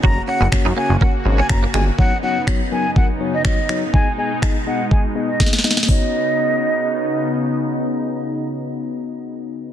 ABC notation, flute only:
X:1
M:4/4
L:1/16
Q:1/4=123
K:B
V:1 name="Flute"
a2 f2 z2 g2 f z2 g a z g z | f2 f2 z2 g2 f z2 d d3 z | g2 g2 z2 f2 g z2 d2 z3 | d12 z4 |
z16 |]